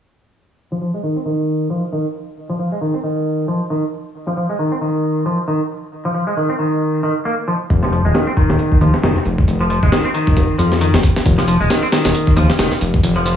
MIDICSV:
0, 0, Header, 1, 4, 480
1, 0, Start_track
1, 0, Key_signature, -4, "minor"
1, 0, Tempo, 444444
1, 636, Time_signature, 4, 2, 24, 8
1, 14433, End_track
2, 0, Start_track
2, 0, Title_t, "Clean electric guitar"
2, 0, Program_c, 0, 27
2, 776, Note_on_c, 0, 53, 70
2, 816, Note_off_c, 0, 53, 0
2, 879, Note_on_c, 0, 53, 66
2, 970, Note_off_c, 0, 53, 0
2, 1016, Note_on_c, 0, 56, 66
2, 1084, Note_off_c, 0, 56, 0
2, 1115, Note_on_c, 0, 51, 75
2, 1246, Note_off_c, 0, 51, 0
2, 1255, Note_on_c, 0, 60, 68
2, 1296, Note_off_c, 0, 60, 0
2, 1357, Note_on_c, 0, 51, 68
2, 1826, Note_off_c, 0, 51, 0
2, 1838, Note_on_c, 0, 53, 71
2, 1967, Note_off_c, 0, 53, 0
2, 2079, Note_on_c, 0, 51, 77
2, 2208, Note_off_c, 0, 51, 0
2, 2694, Note_on_c, 0, 53, 72
2, 2735, Note_off_c, 0, 53, 0
2, 2799, Note_on_c, 0, 53, 67
2, 2890, Note_off_c, 0, 53, 0
2, 2937, Note_on_c, 0, 56, 67
2, 3004, Note_off_c, 0, 56, 0
2, 3037, Note_on_c, 0, 51, 77
2, 3167, Note_off_c, 0, 51, 0
2, 3173, Note_on_c, 0, 60, 68
2, 3215, Note_off_c, 0, 60, 0
2, 3278, Note_on_c, 0, 51, 66
2, 3747, Note_off_c, 0, 51, 0
2, 3759, Note_on_c, 0, 53, 69
2, 3888, Note_off_c, 0, 53, 0
2, 3998, Note_on_c, 0, 51, 73
2, 4127, Note_off_c, 0, 51, 0
2, 4615, Note_on_c, 0, 53, 72
2, 4656, Note_off_c, 0, 53, 0
2, 4719, Note_on_c, 0, 53, 67
2, 4810, Note_off_c, 0, 53, 0
2, 4854, Note_on_c, 0, 56, 69
2, 4923, Note_off_c, 0, 56, 0
2, 4957, Note_on_c, 0, 51, 77
2, 5087, Note_off_c, 0, 51, 0
2, 5095, Note_on_c, 0, 60, 68
2, 5136, Note_off_c, 0, 60, 0
2, 5197, Note_on_c, 0, 51, 66
2, 5667, Note_off_c, 0, 51, 0
2, 5678, Note_on_c, 0, 53, 70
2, 5808, Note_off_c, 0, 53, 0
2, 5915, Note_on_c, 0, 51, 75
2, 6046, Note_off_c, 0, 51, 0
2, 6535, Note_on_c, 0, 53, 73
2, 6575, Note_off_c, 0, 53, 0
2, 6636, Note_on_c, 0, 53, 69
2, 6728, Note_off_c, 0, 53, 0
2, 6771, Note_on_c, 0, 56, 68
2, 6841, Note_off_c, 0, 56, 0
2, 6878, Note_on_c, 0, 51, 77
2, 7007, Note_off_c, 0, 51, 0
2, 7015, Note_on_c, 0, 60, 67
2, 7056, Note_off_c, 0, 60, 0
2, 7116, Note_on_c, 0, 51, 67
2, 7581, Note_off_c, 0, 51, 0
2, 7594, Note_on_c, 0, 51, 73
2, 7688, Note_off_c, 0, 51, 0
2, 7833, Note_on_c, 0, 58, 94
2, 7927, Note_off_c, 0, 58, 0
2, 8075, Note_on_c, 0, 53, 73
2, 8131, Note_off_c, 0, 53, 0
2, 8452, Note_on_c, 0, 53, 71
2, 8494, Note_off_c, 0, 53, 0
2, 8554, Note_on_c, 0, 53, 64
2, 8647, Note_off_c, 0, 53, 0
2, 8694, Note_on_c, 0, 56, 67
2, 8763, Note_off_c, 0, 56, 0
2, 8793, Note_on_c, 0, 51, 78
2, 8925, Note_off_c, 0, 51, 0
2, 8931, Note_on_c, 0, 60, 72
2, 8974, Note_off_c, 0, 60, 0
2, 9036, Note_on_c, 0, 51, 69
2, 9506, Note_off_c, 0, 51, 0
2, 9516, Note_on_c, 0, 53, 69
2, 9647, Note_off_c, 0, 53, 0
2, 9756, Note_on_c, 0, 51, 75
2, 9887, Note_off_c, 0, 51, 0
2, 10373, Note_on_c, 0, 53, 72
2, 10415, Note_off_c, 0, 53, 0
2, 10475, Note_on_c, 0, 53, 70
2, 10568, Note_off_c, 0, 53, 0
2, 10616, Note_on_c, 0, 56, 68
2, 10684, Note_off_c, 0, 56, 0
2, 10716, Note_on_c, 0, 51, 77
2, 10847, Note_off_c, 0, 51, 0
2, 10852, Note_on_c, 0, 60, 68
2, 10894, Note_off_c, 0, 60, 0
2, 10952, Note_on_c, 0, 51, 70
2, 11424, Note_off_c, 0, 51, 0
2, 11432, Note_on_c, 0, 53, 71
2, 11564, Note_off_c, 0, 53, 0
2, 11675, Note_on_c, 0, 51, 78
2, 11806, Note_off_c, 0, 51, 0
2, 12291, Note_on_c, 0, 53, 74
2, 12334, Note_off_c, 0, 53, 0
2, 12395, Note_on_c, 0, 53, 69
2, 12488, Note_off_c, 0, 53, 0
2, 12532, Note_on_c, 0, 56, 71
2, 12602, Note_off_c, 0, 56, 0
2, 12635, Note_on_c, 0, 51, 79
2, 12766, Note_off_c, 0, 51, 0
2, 12771, Note_on_c, 0, 60, 68
2, 12814, Note_off_c, 0, 60, 0
2, 12875, Note_on_c, 0, 51, 72
2, 13345, Note_off_c, 0, 51, 0
2, 13355, Note_on_c, 0, 53, 76
2, 13486, Note_off_c, 0, 53, 0
2, 13596, Note_on_c, 0, 51, 80
2, 13726, Note_off_c, 0, 51, 0
2, 14211, Note_on_c, 0, 53, 71
2, 14254, Note_off_c, 0, 53, 0
2, 14316, Note_on_c, 0, 53, 71
2, 14408, Note_off_c, 0, 53, 0
2, 14433, End_track
3, 0, Start_track
3, 0, Title_t, "Analog synth bass"
3, 0, Program_c, 1, 38
3, 8318, Note_on_c, 1, 29, 93
3, 8659, Note_off_c, 1, 29, 0
3, 8695, Note_on_c, 1, 27, 83
3, 8781, Note_off_c, 1, 27, 0
3, 9175, Note_on_c, 1, 27, 78
3, 9261, Note_off_c, 1, 27, 0
3, 9517, Note_on_c, 1, 39, 80
3, 9632, Note_off_c, 1, 39, 0
3, 9653, Note_on_c, 1, 29, 42
3, 9736, Note_off_c, 1, 29, 0
3, 9757, Note_on_c, 1, 29, 93
3, 9872, Note_off_c, 1, 29, 0
3, 9995, Note_on_c, 1, 29, 91
3, 10203, Note_off_c, 1, 29, 0
3, 10234, Note_on_c, 1, 29, 91
3, 10577, Note_off_c, 1, 29, 0
3, 10614, Note_on_c, 1, 27, 81
3, 10700, Note_off_c, 1, 27, 0
3, 11093, Note_on_c, 1, 27, 81
3, 11180, Note_off_c, 1, 27, 0
3, 11196, Note_on_c, 1, 29, 96
3, 11312, Note_off_c, 1, 29, 0
3, 11434, Note_on_c, 1, 41, 94
3, 11778, Note_off_c, 1, 41, 0
3, 11810, Note_on_c, 1, 29, 83
3, 11898, Note_off_c, 1, 29, 0
3, 12157, Note_on_c, 1, 29, 98
3, 12499, Note_off_c, 1, 29, 0
3, 12534, Note_on_c, 1, 27, 82
3, 12620, Note_off_c, 1, 27, 0
3, 13013, Note_on_c, 1, 27, 82
3, 13100, Note_off_c, 1, 27, 0
3, 13354, Note_on_c, 1, 39, 81
3, 13471, Note_off_c, 1, 39, 0
3, 13492, Note_on_c, 1, 29, 40
3, 13575, Note_off_c, 1, 29, 0
3, 13595, Note_on_c, 1, 29, 93
3, 13711, Note_off_c, 1, 29, 0
3, 13836, Note_on_c, 1, 29, 90
3, 14043, Note_off_c, 1, 29, 0
3, 14076, Note_on_c, 1, 29, 96
3, 14419, Note_off_c, 1, 29, 0
3, 14433, End_track
4, 0, Start_track
4, 0, Title_t, "Drums"
4, 8317, Note_on_c, 9, 42, 84
4, 8318, Note_on_c, 9, 36, 103
4, 8425, Note_off_c, 9, 42, 0
4, 8426, Note_off_c, 9, 36, 0
4, 8456, Note_on_c, 9, 38, 42
4, 8559, Note_on_c, 9, 42, 65
4, 8564, Note_off_c, 9, 38, 0
4, 8667, Note_off_c, 9, 42, 0
4, 8798, Note_on_c, 9, 38, 103
4, 8798, Note_on_c, 9, 42, 81
4, 8906, Note_off_c, 9, 38, 0
4, 8906, Note_off_c, 9, 42, 0
4, 9038, Note_on_c, 9, 36, 85
4, 9038, Note_on_c, 9, 42, 63
4, 9146, Note_off_c, 9, 36, 0
4, 9146, Note_off_c, 9, 42, 0
4, 9175, Note_on_c, 9, 38, 52
4, 9278, Note_on_c, 9, 42, 79
4, 9283, Note_off_c, 9, 38, 0
4, 9386, Note_off_c, 9, 42, 0
4, 9415, Note_on_c, 9, 36, 83
4, 9517, Note_on_c, 9, 42, 61
4, 9523, Note_off_c, 9, 36, 0
4, 9625, Note_off_c, 9, 42, 0
4, 9654, Note_on_c, 9, 38, 43
4, 9758, Note_off_c, 9, 38, 0
4, 9758, Note_on_c, 9, 38, 105
4, 9758, Note_on_c, 9, 42, 83
4, 9866, Note_off_c, 9, 38, 0
4, 9866, Note_off_c, 9, 42, 0
4, 9895, Note_on_c, 9, 38, 37
4, 9995, Note_on_c, 9, 42, 63
4, 10003, Note_off_c, 9, 38, 0
4, 10103, Note_off_c, 9, 42, 0
4, 10134, Note_on_c, 9, 36, 86
4, 10237, Note_on_c, 9, 42, 84
4, 10242, Note_off_c, 9, 36, 0
4, 10345, Note_off_c, 9, 42, 0
4, 10477, Note_on_c, 9, 42, 63
4, 10585, Note_off_c, 9, 42, 0
4, 10614, Note_on_c, 9, 36, 86
4, 10716, Note_on_c, 9, 38, 106
4, 10716, Note_on_c, 9, 42, 82
4, 10722, Note_off_c, 9, 36, 0
4, 10824, Note_off_c, 9, 38, 0
4, 10824, Note_off_c, 9, 42, 0
4, 10957, Note_on_c, 9, 42, 65
4, 11065, Note_off_c, 9, 42, 0
4, 11094, Note_on_c, 9, 36, 87
4, 11196, Note_on_c, 9, 42, 84
4, 11197, Note_off_c, 9, 36, 0
4, 11197, Note_on_c, 9, 36, 101
4, 11304, Note_off_c, 9, 42, 0
4, 11305, Note_off_c, 9, 36, 0
4, 11437, Note_on_c, 9, 42, 63
4, 11545, Note_off_c, 9, 42, 0
4, 11575, Note_on_c, 9, 38, 39
4, 11676, Note_on_c, 9, 42, 84
4, 11683, Note_off_c, 9, 38, 0
4, 11784, Note_off_c, 9, 42, 0
4, 11815, Note_on_c, 9, 38, 110
4, 11917, Note_on_c, 9, 36, 86
4, 11918, Note_on_c, 9, 42, 62
4, 11923, Note_off_c, 9, 38, 0
4, 12025, Note_off_c, 9, 36, 0
4, 12026, Note_off_c, 9, 42, 0
4, 12057, Note_on_c, 9, 38, 54
4, 12157, Note_on_c, 9, 36, 105
4, 12158, Note_on_c, 9, 42, 82
4, 12165, Note_off_c, 9, 38, 0
4, 12265, Note_off_c, 9, 36, 0
4, 12266, Note_off_c, 9, 42, 0
4, 12294, Note_on_c, 9, 38, 43
4, 12397, Note_on_c, 9, 42, 64
4, 12402, Note_off_c, 9, 38, 0
4, 12505, Note_off_c, 9, 42, 0
4, 12639, Note_on_c, 9, 38, 106
4, 12639, Note_on_c, 9, 42, 82
4, 12747, Note_off_c, 9, 38, 0
4, 12747, Note_off_c, 9, 42, 0
4, 12877, Note_on_c, 9, 38, 94
4, 12877, Note_on_c, 9, 42, 72
4, 12985, Note_off_c, 9, 38, 0
4, 12985, Note_off_c, 9, 42, 0
4, 13014, Note_on_c, 9, 38, 97
4, 13014, Note_on_c, 9, 42, 74
4, 13117, Note_off_c, 9, 42, 0
4, 13117, Note_on_c, 9, 42, 84
4, 13122, Note_off_c, 9, 38, 0
4, 13225, Note_off_c, 9, 42, 0
4, 13255, Note_on_c, 9, 36, 84
4, 13356, Note_on_c, 9, 42, 62
4, 13363, Note_off_c, 9, 36, 0
4, 13464, Note_off_c, 9, 42, 0
4, 13494, Note_on_c, 9, 38, 46
4, 13596, Note_off_c, 9, 38, 0
4, 13596, Note_on_c, 9, 38, 109
4, 13596, Note_on_c, 9, 42, 83
4, 13704, Note_off_c, 9, 38, 0
4, 13704, Note_off_c, 9, 42, 0
4, 13733, Note_on_c, 9, 38, 38
4, 13837, Note_on_c, 9, 42, 64
4, 13841, Note_off_c, 9, 38, 0
4, 13945, Note_off_c, 9, 42, 0
4, 13975, Note_on_c, 9, 36, 87
4, 14078, Note_on_c, 9, 42, 87
4, 14083, Note_off_c, 9, 36, 0
4, 14186, Note_off_c, 9, 42, 0
4, 14317, Note_on_c, 9, 42, 64
4, 14425, Note_off_c, 9, 42, 0
4, 14433, End_track
0, 0, End_of_file